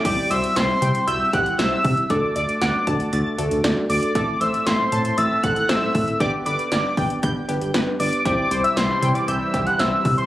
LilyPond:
<<
  \new Staff \with { instrumentName = "Analog synth lead" } { \time 4/4 \key c \lydian \tempo 4 = 117 d'''8 e'''8 c'''4 e'''8 fis'''8 e'''4 | d'''8 d'''8 d'''4 r4. d'''8 | d'''8 e'''8 c'''4 e'''8 fis'''8 e'''4 | d'''8 d'''8 d'''4 r4. d'''8 |
d'''8. e'''16 c'''8. d'''16 e'''8. fis'''16 e'''8. c'''16 | }
  \new Staff \with { instrumentName = "Synth pluck" } { \time 4/4 \key c \lydian g'8 c''8 e''8 g''8 g'''8 g'8 c''8 r8 | a'8 d''8 fis''8 a''8 a'''8 a'8 d''8 r8 | a'8 c''8 e''8 a''8 a'''8 a'8 c''8 r8 | g'8 b'8 d''8 g''8 g'''8 g'8 b'8 r8 |
g'8 c''8 e''8 g''8 g'''8 g'8 c''8 r8 | }
  \new Staff \with { instrumentName = "Tine electric piano" } { \time 4/4 \key c \lydian <g c' e' g'>8 <g c' e' fis'>8 <g c' e' g'>8 <g c' e' g'>8 <g c' e' fis'>8 <g c' e' g'>8 <g c' e' g'>8 <g c' e' g'>8 | <a d' fis' a'>8 <a d' fis' a'>8 <a d' fis' b'>8 <a d' fis' a'>8 <a d' fis' a'>8 <a d' fis' a'>8 <a d' fis' a'>8 <a d' fis' a'>8 | <a c' e' a'>8 <a c' a'>8 <a c' e' a'>8 <a c' e' a'>8 <a c' e' a'>8 <a c' e' a'>8 <a c' e' a'>8 <a c' e' a'>8 | <b d' g' b'>8 <b d' g' a'>8 <b d' g' b'>8 <b d' g' b'>8 <b d' g' b'>8 <b d' g' b'>8 <b d' g' b'>8 <b d' g' b'>8 |
<c' e' g' c''>8 <c' e' g' c''>8 <c' e' g' b'>8 <c' e' g' c''>8 <c' e' g' c''>8 <c' e' g' c''>8 <c' e' g' c''>8 <c' e' g' c''>8 | }
  \new Staff \with { instrumentName = "Analog synth pad" } { \clef bass \time 4/4 \key c \lydian r1 | r1 | r1 | r1 |
<c e g e'>1 | }
  \new Staff \with { instrumentName = "Analog synth bass" } { \clef bass \time 4/4 \key c \lydian c,16 r16 c,16 r16 c,16 r16 c16 r16 c,16 r16 c,16 r16 c,16 r16 c16 r16 | d,16 r16 d,16 r16 d,16 r16 d,16 r16 d,16 r16 d,16 d,16 d,16 r16 d,16 r16 | a,,16 r16 a,,16 r16 a,,16 r16 a,16 r16 a,,16 r16 a,,16 r16 a,,16 r16 a,16 r16 | g,,16 r16 g,,16 r16 g,,16 r16 g,,16 r16 g,,16 r16 g,,16 g,,16 g,,16 r16 g,,16 r16 |
c,16 r16 c,16 r16 c,16 r16 c16 r16 c,16 r16 c,16 r16 c,16 r16 c16 r16 | }
  \new DrumStaff \with { instrumentName = "Drums" } \drummode { \time 4/4 <cymc hh bd>8 hh16 hh16 <hh sn>8 hh16 hh16 hh8 <hh bd>16 hh16 <hh sn>8 <hho bd>16 hh16 | <hh bd>8 hh16 hh16 <hh sn>8 <hh bd>16 hh16 hh8 hh16 hh16 <hh sn>8 hho16 hh16 | <hh bd>8 hh16 hh16 <hh sn>8 hh16 hh16 hh8 <hh bd>16 hh16 <hh sn>8 <hho bd>16 hh16 | <hh bd>8 hh16 hh16 <hh sn>8 <hho bd>16 hh16 <hh bd>8 hh16 hh16 <hh sn>8 hho16 hh16 |
<hh bd>8 hh16 hh16 <hh sn>8 hh16 hh16 hh8 <hh bd>16 hh16 <hh sn>8 <hho bd>16 hh16 | }
>>